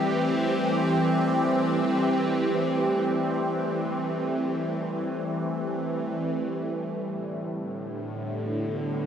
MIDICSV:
0, 0, Header, 1, 2, 480
1, 0, Start_track
1, 0, Key_signature, 0, "minor"
1, 0, Tempo, 500000
1, 8699, End_track
2, 0, Start_track
2, 0, Title_t, "Ambient pad"
2, 0, Program_c, 0, 92
2, 0, Note_on_c, 0, 52, 70
2, 0, Note_on_c, 0, 55, 65
2, 0, Note_on_c, 0, 57, 74
2, 0, Note_on_c, 0, 60, 79
2, 0, Note_on_c, 0, 67, 62
2, 6028, Note_on_c, 0, 45, 81
2, 6034, Note_off_c, 0, 60, 0
2, 6039, Note_off_c, 0, 52, 0
2, 6041, Note_off_c, 0, 67, 0
2, 6655, Note_on_c, 0, 50, 76
2, 7454, Note_on_c, 0, 59, 77
2, 8212, Note_on_c, 0, 66, 82
2, 8699, Note_off_c, 0, 45, 0
2, 8699, Note_off_c, 0, 50, 0
2, 8699, Note_off_c, 0, 55, 0
2, 8699, Note_off_c, 0, 57, 0
2, 8699, Note_off_c, 0, 59, 0
2, 8699, Note_off_c, 0, 66, 0
2, 8699, End_track
0, 0, End_of_file